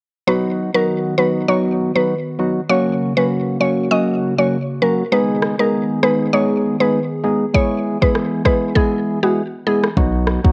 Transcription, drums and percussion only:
5.42 cross-stick
6.03 cross-stick
7.55 kick
8.02 kick
8.15 cross-stick
8.45 kick, cross-stick
8.76 kick
9.84 cross-stick
9.97 kick
10.27 cross-stick
10.44 kick

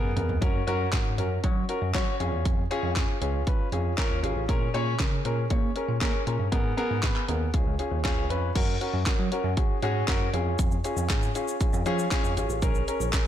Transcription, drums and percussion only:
0.17 closed hi-hat, mid tom
0.29 floor tom
0.42 kick, closed hi-hat
0.68 closed hi-hat
0.93 kick, snare, clap, closed hi-hat
1.18 closed hi-hat
1.44 kick, closed hi-hat
1.69 closed hi-hat
1.95 kick, snare, clap, closed hi-hat
2.20 closed hi-hat
2.45 kick, closed hi-hat
2.71 closed hi-hat
2.96 kick, snare, clap, closed hi-hat
3.22 closed hi-hat
3.47 kick, closed hi-hat
3.72 closed hi-hat
3.98 kick, snare, clap, closed hi-hat
4.24 closed hi-hat
4.49 kick, closed hi-hat
4.74 closed hi-hat
5.00 kick, snare, clap, closed hi-hat
5.25 closed hi-hat
5.50 kick, closed hi-hat
5.76 closed hi-hat
6.01 kick, snare, clap, closed hi-hat
6.27 closed hi-hat
6.52 kick, closed hi-hat
6.78 closed hi-hat
7.03 kick, snare, clap, closed hi-hat
7.16 clap
7.29 closed hi-hat
7.54 kick, closed hi-hat
7.79 closed hi-hat
8.05 kick, snare, clap, closed hi-hat
8.30 closed hi-hat
8.55 kick, closed hi-hat, crash
8.81 closed hi-hat
9.06 kick, snare, clap, closed hi-hat
9.32 closed hi-hat
9.57 kick, closed hi-hat
9.82 closed hi-hat
10.08 kick, snare, clap, closed hi-hat
10.34 closed hi-hat
10.59 kick, closed hi-hat, shaker
10.71 shaker
10.84 closed hi-hat, shaker
10.97 shaker
11.10 kick, snare, clap, closed hi-hat, shaker
11.23 shaker
11.35 closed hi-hat, shaker
11.48 shaker
11.61 kick, closed hi-hat, shaker
11.73 shaker
11.86 closed hi-hat, shaker
11.99 shaker
12.11 kick, snare, clap, closed hi-hat, shaker
12.24 shaker
12.37 closed hi-hat, shaker
12.50 shaker
12.62 kick, closed hi-hat, shaker
12.75 shaker
12.88 closed hi-hat, shaker
13.01 shaker
13.13 kick, snare, clap, closed hi-hat, shaker

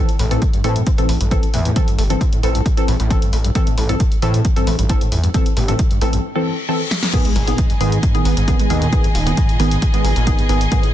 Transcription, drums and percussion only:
0.09 closed hi-hat
0.19 open hi-hat
0.31 closed hi-hat
0.42 kick, closed hi-hat
0.53 closed hi-hat
0.64 open hi-hat
0.76 closed hi-hat
0.87 kick, closed hi-hat
0.98 closed hi-hat
1.09 open hi-hat
1.21 closed hi-hat
1.31 kick, closed hi-hat
1.43 closed hi-hat
1.54 open hi-hat
1.65 closed hi-hat
1.76 kick, closed hi-hat
1.88 closed hi-hat
1.99 open hi-hat
2.10 closed hi-hat
2.21 kick, closed hi-hat
2.33 closed hi-hat
2.43 open hi-hat
2.55 closed hi-hat
2.66 kick, closed hi-hat
2.77 closed hi-hat
2.88 open hi-hat
3.00 closed hi-hat
3.10 kick, closed hi-hat
3.22 closed hi-hat
3.33 open hi-hat
3.44 closed hi-hat
3.55 kick, closed hi-hat
3.67 closed hi-hat
3.78 open hi-hat
3.89 closed hi-hat
4.00 kick, closed hi-hat
4.12 closed hi-hat
4.22 open hi-hat
4.34 closed hi-hat
4.45 kick, closed hi-hat
4.56 closed hi-hat
4.67 open hi-hat
4.79 closed hi-hat
4.89 kick, closed hi-hat
5.01 closed hi-hat
5.12 open hi-hat
5.24 closed hi-hat
5.34 kick, closed hi-hat
5.46 closed hi-hat
5.57 open hi-hat
5.68 closed hi-hat
5.79 kick, closed hi-hat
5.91 closed hi-hat
6.01 open hi-hat
6.13 closed hi-hat
6.91 snare
7.03 snare
7.13 kick, closed hi-hat, crash
7.25 closed hi-hat
7.36 open hi-hat
7.47 closed hi-hat
7.58 kick, closed hi-hat
7.70 closed hi-hat
7.81 open hi-hat
7.92 closed hi-hat
8.03 kick, closed hi-hat
8.15 closed hi-hat
8.25 open hi-hat
8.37 closed hi-hat
8.48 kick, closed hi-hat
8.59 closed hi-hat
8.70 open hi-hat
8.82 closed hi-hat
8.93 kick, closed hi-hat
9.04 closed hi-hat
9.15 open hi-hat
9.27 closed hi-hat
9.37 kick, closed hi-hat
9.49 closed hi-hat
9.60 open hi-hat
9.71 closed hi-hat
9.82 kick, closed hi-hat
9.94 closed hi-hat
10.05 open hi-hat
10.16 closed hi-hat
10.27 kick, closed hi-hat
10.39 closed hi-hat
10.49 open hi-hat
10.61 closed hi-hat
10.72 kick, closed hi-hat
10.83 closed hi-hat

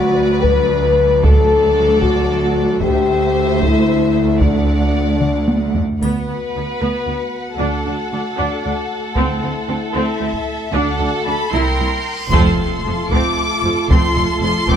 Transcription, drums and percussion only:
0.44 taiko
1.23 taiko
2.02 taiko
2.81 taiko
3.61 taiko
4.41 taiko
5.21 taiko mid
5.48 taiko high
5.75 taiko low
6.01 taiko, triangle
9.16 taiko
10.34 taiko
12.33 taiko
13.12 taiko
13.91 taiko
14.69 taiko

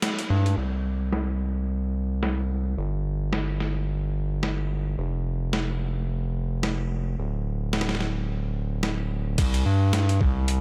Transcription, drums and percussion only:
0.02 snare, closed hi-hat
0.19 closed hi-hat
0.46 closed hi-hat
0.58 crash
1.12 snare
2.23 snare
3.33 snare
3.60 snare
4.43 snare
5.53 snare
6.63 snare
7.73 snare
7.81 snare
7.89 snare
7.95 snare
8.01 snare
8.83 snare
9.38 kick, closed hi-hat, crash
9.54 closed hi-hat
9.93 snare, closed hi-hat
10.09 closed hi-hat
10.21 kick
10.48 closed hi-hat

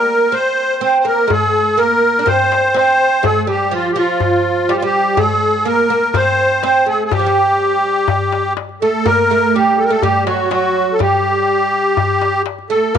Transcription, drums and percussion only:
1.30 darbuka dum
1.54 darbuka ka
1.79 darbuka ka
2.03 darbuka ka
2.27 darbuka dum
2.52 darbuka tek
2.64 darbuka ka
2.76 darbuka tek
3.24 darbuka dum
3.48 darbuka ka
3.72 darbuka ka
3.96 darbuka ka
4.20 darbuka dum
4.57 darbuka ka
4.69 darbuka tek
5.17 darbuka dum
5.42 darbuka ka
5.66 darbuka ka
5.90 darbuka ka
6.14 darbuka dum
6.51 darbuka ka
6.63 darbuka tek
7.12 darbuka dum
7.61 darbuka ka
7.73 darbuka ka
7.85 darbuka ka
8.08 darbuka dum
8.21 darbuka ka
8.32 darbuka tek
8.45 darbuka ka
8.57 darbuka tek
8.69 darbuka ka
9.06 darbuka dum
9.66 darbuka ka
9.78 darbuka ka
10.02 darbuka dum
10.27 darbuka tek
10.51 darbuka tek
10.63 darbuka ka
10.76 darbuka ka
10.89 darbuka ka
11.00 darbuka dum
11.25 darbuka ka
11.62 darbuka ka
11.73 darbuka ka
11.97 darbuka dum
12.22 darbuka tek
12.46 darbuka tek
12.59 darbuka ka
12.71 darbuka ka
12.83 darbuka ka
12.95 darbuka dum

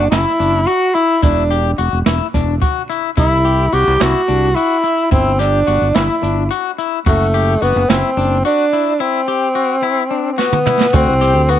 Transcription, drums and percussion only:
0.12 snare, closed hi-hat
0.40 closed hi-hat
0.68 closed hi-hat
0.95 closed hi-hat
1.23 kick, closed hi-hat
1.51 closed hi-hat
1.78 closed hi-hat
2.06 snare, closed hi-hat
2.34 kick, snare, closed hi-hat
2.62 kick, closed hi-hat
2.90 closed hi-hat
3.18 kick, closed hi-hat
3.46 closed hi-hat
3.73 closed hi-hat
4.01 snare, closed hi-hat
4.28 closed hi-hat
4.56 closed hi-hat
4.84 closed hi-hat
5.12 kick, closed hi-hat
5.40 snare, closed hi-hat
5.68 closed hi-hat
5.95 snare, closed hi-hat
6.23 closed hi-hat
6.51 closed hi-hat
6.79 closed hi-hat
7.06 kick, closed hi-hat
7.34 closed hi-hat
7.62 closed hi-hat
7.90 snare, closed hi-hat
8.17 closed hi-hat
8.45 closed hi-hat
8.73 closed hi-hat
10.39 snare
10.53 mid tom
10.67 mid tom
10.81 snare
10.94 kick, closed hi-hat
11.22 snare, closed hi-hat
11.50 closed hi-hat

